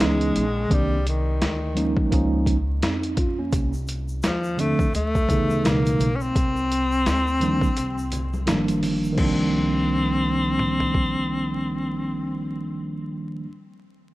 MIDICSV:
0, 0, Header, 1, 6, 480
1, 0, Start_track
1, 0, Tempo, 705882
1, 480, Time_signature, 4, 2, 24, 8
1, 9616, End_track
2, 0, Start_track
2, 0, Title_t, "Tine electric piano"
2, 0, Program_c, 0, 4
2, 0, Note_on_c, 0, 52, 67
2, 0, Note_on_c, 0, 56, 62
2, 0, Note_on_c, 0, 59, 58
2, 2, Note_on_c, 0, 61, 62
2, 7, Note_on_c, 0, 63, 73
2, 291, Note_off_c, 0, 52, 0
2, 293, Note_off_c, 0, 56, 0
2, 296, Note_off_c, 0, 59, 0
2, 298, Note_off_c, 0, 61, 0
2, 300, Note_off_c, 0, 63, 0
2, 468, Note_on_c, 0, 51, 75
2, 474, Note_on_c, 0, 55, 69
2, 480, Note_on_c, 0, 58, 69
2, 485, Note_on_c, 0, 60, 68
2, 487, Note_on_c, 0, 62, 83
2, 655, Note_off_c, 0, 51, 0
2, 658, Note_off_c, 0, 55, 0
2, 661, Note_off_c, 0, 58, 0
2, 663, Note_off_c, 0, 60, 0
2, 665, Note_off_c, 0, 62, 0
2, 1189, Note_on_c, 0, 53, 73
2, 1194, Note_on_c, 0, 56, 68
2, 1200, Note_on_c, 0, 58, 70
2, 1204, Note_on_c, 0, 61, 71
2, 1209, Note_on_c, 0, 63, 81
2, 1421, Note_off_c, 0, 53, 0
2, 1427, Note_off_c, 0, 56, 0
2, 1429, Note_on_c, 0, 53, 84
2, 1431, Note_off_c, 0, 58, 0
2, 1435, Note_on_c, 0, 56, 72
2, 1437, Note_off_c, 0, 61, 0
2, 1439, Note_on_c, 0, 58, 72
2, 1441, Note_off_c, 0, 63, 0
2, 1446, Note_on_c, 0, 61, 76
2, 1449, Note_on_c, 0, 63, 86
2, 1731, Note_off_c, 0, 53, 0
2, 1734, Note_off_c, 0, 56, 0
2, 1736, Note_off_c, 0, 58, 0
2, 1739, Note_off_c, 0, 61, 0
2, 1741, Note_off_c, 0, 63, 0
2, 1924, Note_on_c, 0, 63, 72
2, 1928, Note_on_c, 0, 60, 57
2, 2150, Note_off_c, 0, 63, 0
2, 2152, Note_off_c, 0, 60, 0
2, 2162, Note_on_c, 0, 65, 72
2, 2165, Note_on_c, 0, 61, 54
2, 2295, Note_off_c, 0, 65, 0
2, 2297, Note_off_c, 0, 61, 0
2, 2304, Note_on_c, 0, 61, 66
2, 2311, Note_on_c, 0, 58, 54
2, 2531, Note_off_c, 0, 61, 0
2, 2534, Note_off_c, 0, 58, 0
2, 3107, Note_on_c, 0, 50, 77
2, 3111, Note_on_c, 0, 53, 65
2, 3118, Note_on_c, 0, 57, 66
2, 3123, Note_on_c, 0, 60, 65
2, 3129, Note_on_c, 0, 62, 75
2, 3294, Note_off_c, 0, 50, 0
2, 3297, Note_off_c, 0, 53, 0
2, 3300, Note_off_c, 0, 57, 0
2, 3303, Note_off_c, 0, 60, 0
2, 3305, Note_off_c, 0, 62, 0
2, 3586, Note_on_c, 0, 49, 62
2, 3593, Note_on_c, 0, 52, 64
2, 3600, Note_on_c, 0, 68, 64
2, 3602, Note_on_c, 0, 59, 64
2, 3607, Note_on_c, 0, 63, 72
2, 3826, Note_off_c, 0, 49, 0
2, 3832, Note_off_c, 0, 52, 0
2, 3834, Note_on_c, 0, 49, 68
2, 3840, Note_on_c, 0, 52, 62
2, 3843, Note_on_c, 0, 56, 67
2, 3844, Note_off_c, 0, 63, 0
2, 3850, Note_on_c, 0, 47, 68
2, 3852, Note_on_c, 0, 63, 73
2, 3897, Note_off_c, 0, 68, 0
2, 3898, Note_off_c, 0, 59, 0
2, 4134, Note_off_c, 0, 49, 0
2, 4137, Note_off_c, 0, 52, 0
2, 4138, Note_off_c, 0, 56, 0
2, 4142, Note_off_c, 0, 47, 0
2, 4143, Note_off_c, 0, 63, 0
2, 5032, Note_on_c, 0, 51, 82
2, 5038, Note_on_c, 0, 53, 73
2, 5044, Note_on_c, 0, 55, 77
2, 5048, Note_on_c, 0, 58, 75
2, 5054, Note_on_c, 0, 62, 90
2, 5217, Note_off_c, 0, 51, 0
2, 5220, Note_off_c, 0, 53, 0
2, 5223, Note_off_c, 0, 55, 0
2, 5225, Note_off_c, 0, 58, 0
2, 5228, Note_off_c, 0, 62, 0
2, 5752, Note_on_c, 0, 51, 83
2, 5757, Note_on_c, 0, 53, 79
2, 5762, Note_on_c, 0, 55, 76
2, 5768, Note_on_c, 0, 58, 81
2, 5773, Note_on_c, 0, 62, 90
2, 6196, Note_off_c, 0, 51, 0
2, 6204, Note_on_c, 0, 51, 86
2, 6213, Note_off_c, 0, 53, 0
2, 6221, Note_on_c, 0, 53, 72
2, 6236, Note_off_c, 0, 55, 0
2, 6244, Note_off_c, 0, 58, 0
2, 6244, Note_on_c, 0, 55, 65
2, 6247, Note_off_c, 0, 62, 0
2, 6265, Note_on_c, 0, 58, 70
2, 6285, Note_on_c, 0, 62, 92
2, 9135, Note_off_c, 0, 51, 0
2, 9143, Note_off_c, 0, 53, 0
2, 9155, Note_off_c, 0, 55, 0
2, 9165, Note_off_c, 0, 58, 0
2, 9175, Note_off_c, 0, 62, 0
2, 9616, End_track
3, 0, Start_track
3, 0, Title_t, "Alto saxophone"
3, 0, Program_c, 1, 65
3, 0, Note_on_c, 1, 56, 97
3, 500, Note_on_c, 1, 55, 90
3, 510, Note_off_c, 1, 56, 0
3, 730, Note_off_c, 1, 55, 0
3, 737, Note_on_c, 1, 51, 74
3, 1661, Note_off_c, 1, 51, 0
3, 2892, Note_on_c, 1, 53, 86
3, 3129, Note_on_c, 1, 57, 97
3, 3139, Note_off_c, 1, 53, 0
3, 3365, Note_off_c, 1, 57, 0
3, 3368, Note_on_c, 1, 57, 101
3, 3840, Note_on_c, 1, 58, 99
3, 3850, Note_off_c, 1, 57, 0
3, 4184, Note_on_c, 1, 61, 68
3, 4195, Note_off_c, 1, 58, 0
3, 4229, Note_on_c, 1, 60, 109
3, 4239, Note_off_c, 1, 61, 0
3, 5665, Note_off_c, 1, 60, 0
3, 6253, Note_on_c, 1, 60, 86
3, 8683, Note_off_c, 1, 60, 0
3, 9616, End_track
4, 0, Start_track
4, 0, Title_t, "Upright bass"
4, 0, Program_c, 2, 32
4, 4, Note_on_c, 2, 37, 93
4, 231, Note_off_c, 2, 37, 0
4, 243, Note_on_c, 2, 34, 88
4, 470, Note_off_c, 2, 34, 0
4, 480, Note_on_c, 2, 36, 101
4, 936, Note_off_c, 2, 36, 0
4, 960, Note_on_c, 2, 38, 90
4, 1322, Note_off_c, 2, 38, 0
4, 1443, Note_on_c, 2, 37, 109
4, 1898, Note_off_c, 2, 37, 0
4, 1919, Note_on_c, 2, 41, 82
4, 2376, Note_off_c, 2, 41, 0
4, 2396, Note_on_c, 2, 36, 110
4, 2854, Note_off_c, 2, 36, 0
4, 2876, Note_on_c, 2, 39, 91
4, 3241, Note_off_c, 2, 39, 0
4, 3356, Note_on_c, 2, 38, 94
4, 3814, Note_off_c, 2, 38, 0
4, 3840, Note_on_c, 2, 37, 96
4, 4068, Note_off_c, 2, 37, 0
4, 4076, Note_on_c, 2, 35, 81
4, 4306, Note_off_c, 2, 35, 0
4, 4322, Note_on_c, 2, 36, 90
4, 4777, Note_off_c, 2, 36, 0
4, 4800, Note_on_c, 2, 38, 96
4, 5162, Note_off_c, 2, 38, 0
4, 5284, Note_on_c, 2, 36, 102
4, 5738, Note_off_c, 2, 36, 0
4, 5762, Note_on_c, 2, 31, 94
4, 6217, Note_off_c, 2, 31, 0
4, 6242, Note_on_c, 2, 36, 97
4, 9154, Note_off_c, 2, 36, 0
4, 9616, End_track
5, 0, Start_track
5, 0, Title_t, "Muted upright bass strokes"
5, 1339, Note_on_c, 9, 29, 48
5, 1407, Note_off_c, 9, 29, 0
5, 3256, Note_on_c, 9, 29, 51
5, 3324, Note_off_c, 9, 29, 0
5, 5179, Note_on_c, 9, 29, 50
5, 5247, Note_off_c, 9, 29, 0
5, 9616, End_track
6, 0, Start_track
6, 0, Title_t, "Drums"
6, 2, Note_on_c, 9, 42, 89
6, 6, Note_on_c, 9, 38, 113
6, 70, Note_off_c, 9, 42, 0
6, 74, Note_off_c, 9, 38, 0
6, 143, Note_on_c, 9, 42, 44
6, 211, Note_off_c, 9, 42, 0
6, 243, Note_on_c, 9, 42, 71
6, 311, Note_off_c, 9, 42, 0
6, 481, Note_on_c, 9, 36, 105
6, 482, Note_on_c, 9, 42, 82
6, 549, Note_off_c, 9, 36, 0
6, 550, Note_off_c, 9, 42, 0
6, 725, Note_on_c, 9, 42, 77
6, 793, Note_off_c, 9, 42, 0
6, 963, Note_on_c, 9, 42, 75
6, 965, Note_on_c, 9, 38, 98
6, 1031, Note_off_c, 9, 42, 0
6, 1033, Note_off_c, 9, 38, 0
6, 1202, Note_on_c, 9, 42, 66
6, 1270, Note_off_c, 9, 42, 0
6, 1337, Note_on_c, 9, 36, 88
6, 1405, Note_off_c, 9, 36, 0
6, 1441, Note_on_c, 9, 36, 83
6, 1444, Note_on_c, 9, 42, 90
6, 1509, Note_off_c, 9, 36, 0
6, 1512, Note_off_c, 9, 42, 0
6, 1675, Note_on_c, 9, 36, 82
6, 1680, Note_on_c, 9, 42, 74
6, 1743, Note_off_c, 9, 36, 0
6, 1748, Note_off_c, 9, 42, 0
6, 1921, Note_on_c, 9, 42, 85
6, 1924, Note_on_c, 9, 38, 110
6, 1989, Note_off_c, 9, 42, 0
6, 1992, Note_off_c, 9, 38, 0
6, 2062, Note_on_c, 9, 42, 44
6, 2130, Note_off_c, 9, 42, 0
6, 2155, Note_on_c, 9, 42, 76
6, 2156, Note_on_c, 9, 36, 94
6, 2223, Note_off_c, 9, 42, 0
6, 2224, Note_off_c, 9, 36, 0
6, 2397, Note_on_c, 9, 36, 109
6, 2397, Note_on_c, 9, 42, 91
6, 2397, Note_on_c, 9, 82, 41
6, 2465, Note_off_c, 9, 36, 0
6, 2465, Note_off_c, 9, 42, 0
6, 2465, Note_off_c, 9, 82, 0
6, 2540, Note_on_c, 9, 82, 39
6, 2608, Note_off_c, 9, 82, 0
6, 2635, Note_on_c, 9, 82, 45
6, 2643, Note_on_c, 9, 42, 78
6, 2703, Note_off_c, 9, 82, 0
6, 2711, Note_off_c, 9, 42, 0
6, 2778, Note_on_c, 9, 82, 42
6, 2846, Note_off_c, 9, 82, 0
6, 2875, Note_on_c, 9, 82, 66
6, 2881, Note_on_c, 9, 42, 76
6, 2882, Note_on_c, 9, 38, 101
6, 2943, Note_off_c, 9, 82, 0
6, 2949, Note_off_c, 9, 42, 0
6, 2950, Note_off_c, 9, 38, 0
6, 3017, Note_on_c, 9, 82, 41
6, 3085, Note_off_c, 9, 82, 0
6, 3119, Note_on_c, 9, 64, 57
6, 3119, Note_on_c, 9, 82, 42
6, 3120, Note_on_c, 9, 42, 64
6, 3187, Note_off_c, 9, 64, 0
6, 3187, Note_off_c, 9, 82, 0
6, 3188, Note_off_c, 9, 42, 0
6, 3257, Note_on_c, 9, 36, 96
6, 3260, Note_on_c, 9, 82, 47
6, 3325, Note_off_c, 9, 36, 0
6, 3328, Note_off_c, 9, 82, 0
6, 3359, Note_on_c, 9, 82, 54
6, 3364, Note_on_c, 9, 42, 88
6, 3427, Note_off_c, 9, 82, 0
6, 3432, Note_off_c, 9, 42, 0
6, 3503, Note_on_c, 9, 36, 86
6, 3503, Note_on_c, 9, 82, 44
6, 3571, Note_off_c, 9, 36, 0
6, 3571, Note_off_c, 9, 82, 0
6, 3595, Note_on_c, 9, 36, 92
6, 3602, Note_on_c, 9, 42, 67
6, 3602, Note_on_c, 9, 64, 68
6, 3602, Note_on_c, 9, 82, 49
6, 3663, Note_off_c, 9, 36, 0
6, 3670, Note_off_c, 9, 42, 0
6, 3670, Note_off_c, 9, 64, 0
6, 3670, Note_off_c, 9, 82, 0
6, 3742, Note_on_c, 9, 63, 62
6, 3742, Note_on_c, 9, 82, 46
6, 3810, Note_off_c, 9, 63, 0
6, 3810, Note_off_c, 9, 82, 0
6, 3842, Note_on_c, 9, 82, 57
6, 3843, Note_on_c, 9, 42, 85
6, 3847, Note_on_c, 9, 38, 114
6, 3910, Note_off_c, 9, 82, 0
6, 3911, Note_off_c, 9, 42, 0
6, 3915, Note_off_c, 9, 38, 0
6, 3986, Note_on_c, 9, 63, 57
6, 3986, Note_on_c, 9, 82, 43
6, 3989, Note_on_c, 9, 42, 46
6, 4054, Note_off_c, 9, 63, 0
6, 4054, Note_off_c, 9, 82, 0
6, 4057, Note_off_c, 9, 42, 0
6, 4082, Note_on_c, 9, 64, 70
6, 4082, Note_on_c, 9, 82, 43
6, 4085, Note_on_c, 9, 42, 75
6, 4150, Note_off_c, 9, 64, 0
6, 4150, Note_off_c, 9, 82, 0
6, 4153, Note_off_c, 9, 42, 0
6, 4221, Note_on_c, 9, 82, 43
6, 4289, Note_off_c, 9, 82, 0
6, 4322, Note_on_c, 9, 36, 119
6, 4322, Note_on_c, 9, 82, 46
6, 4323, Note_on_c, 9, 42, 91
6, 4390, Note_off_c, 9, 36, 0
6, 4390, Note_off_c, 9, 82, 0
6, 4391, Note_off_c, 9, 42, 0
6, 4463, Note_on_c, 9, 82, 39
6, 4531, Note_off_c, 9, 82, 0
6, 4566, Note_on_c, 9, 82, 43
6, 4567, Note_on_c, 9, 42, 84
6, 4634, Note_off_c, 9, 82, 0
6, 4635, Note_off_c, 9, 42, 0
6, 4704, Note_on_c, 9, 82, 41
6, 4772, Note_off_c, 9, 82, 0
6, 4803, Note_on_c, 9, 42, 75
6, 4804, Note_on_c, 9, 38, 106
6, 4806, Note_on_c, 9, 82, 62
6, 4871, Note_off_c, 9, 42, 0
6, 4872, Note_off_c, 9, 38, 0
6, 4874, Note_off_c, 9, 82, 0
6, 4946, Note_on_c, 9, 82, 39
6, 5014, Note_off_c, 9, 82, 0
6, 5040, Note_on_c, 9, 42, 63
6, 5045, Note_on_c, 9, 64, 61
6, 5045, Note_on_c, 9, 82, 41
6, 5108, Note_off_c, 9, 42, 0
6, 5113, Note_off_c, 9, 64, 0
6, 5113, Note_off_c, 9, 82, 0
6, 5178, Note_on_c, 9, 36, 91
6, 5186, Note_on_c, 9, 82, 47
6, 5246, Note_off_c, 9, 36, 0
6, 5254, Note_off_c, 9, 82, 0
6, 5281, Note_on_c, 9, 42, 101
6, 5285, Note_on_c, 9, 82, 60
6, 5349, Note_off_c, 9, 42, 0
6, 5353, Note_off_c, 9, 82, 0
6, 5428, Note_on_c, 9, 82, 45
6, 5496, Note_off_c, 9, 82, 0
6, 5519, Note_on_c, 9, 42, 73
6, 5525, Note_on_c, 9, 64, 64
6, 5525, Note_on_c, 9, 82, 48
6, 5587, Note_off_c, 9, 42, 0
6, 5593, Note_off_c, 9, 64, 0
6, 5593, Note_off_c, 9, 82, 0
6, 5667, Note_on_c, 9, 63, 65
6, 5667, Note_on_c, 9, 82, 48
6, 5735, Note_off_c, 9, 63, 0
6, 5735, Note_off_c, 9, 82, 0
6, 5759, Note_on_c, 9, 42, 87
6, 5763, Note_on_c, 9, 38, 117
6, 5766, Note_on_c, 9, 82, 61
6, 5827, Note_off_c, 9, 42, 0
6, 5831, Note_off_c, 9, 38, 0
6, 5834, Note_off_c, 9, 82, 0
6, 5904, Note_on_c, 9, 42, 50
6, 5908, Note_on_c, 9, 63, 60
6, 5908, Note_on_c, 9, 82, 45
6, 5972, Note_off_c, 9, 42, 0
6, 5976, Note_off_c, 9, 63, 0
6, 5976, Note_off_c, 9, 82, 0
6, 6002, Note_on_c, 9, 46, 53
6, 6007, Note_on_c, 9, 64, 63
6, 6007, Note_on_c, 9, 82, 46
6, 6070, Note_off_c, 9, 46, 0
6, 6075, Note_off_c, 9, 64, 0
6, 6075, Note_off_c, 9, 82, 0
6, 6148, Note_on_c, 9, 82, 46
6, 6216, Note_off_c, 9, 82, 0
6, 6240, Note_on_c, 9, 49, 84
6, 6242, Note_on_c, 9, 36, 93
6, 6250, Note_on_c, 9, 63, 74
6, 6308, Note_off_c, 9, 49, 0
6, 6310, Note_off_c, 9, 36, 0
6, 6318, Note_off_c, 9, 63, 0
6, 7203, Note_on_c, 9, 47, 62
6, 7271, Note_off_c, 9, 47, 0
6, 7346, Note_on_c, 9, 43, 71
6, 7414, Note_off_c, 9, 43, 0
6, 7443, Note_on_c, 9, 36, 78
6, 7511, Note_off_c, 9, 36, 0
6, 9616, End_track
0, 0, End_of_file